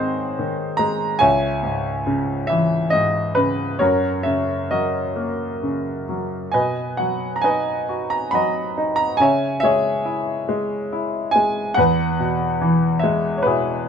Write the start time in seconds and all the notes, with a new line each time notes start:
Already playing: G#2 D#3 G#3 C4 D#4 G#4 C5 C#5
0.39 D#3
0.77 G#3 A#5
1.19 C#2 C#5 E5 G#5
1.63 G#2
2.07 C#3
2.47 E3 E5
2.90 G#2 D#5
3.35 C#3 B4
3.79 F#2 F#4 A#4 C#5
4.23 C#3 E5
4.71 F#3 F#4 A#4 D#5
5.16 A#3
5.63 C#3
6.09 F#3
6.52 B2 B4 D#5 G#5
6.97 F#3 F#5
7.36 A#5
7.41 D#4 B4 D#5 G#5
7.89 F#4
8.10 A#5
8.31 F#3 D#5 F#5 B5
8.78 D#4
8.96 A#5
9.17 C#3 G#5
9.21 C#5 E5
9.60 G#3 E5
9.64 G#4 C#5
10.05 E4
10.49 G#3
10.93 E4
11.31 G#5
11.36 G#3
11.74 E2 F#5
11.79 B4
12.19 B2
12.61 E3
12.99 E5
13.03 G#3
13.38 C#5
13.43 B2 B4
13.47 E4 G#4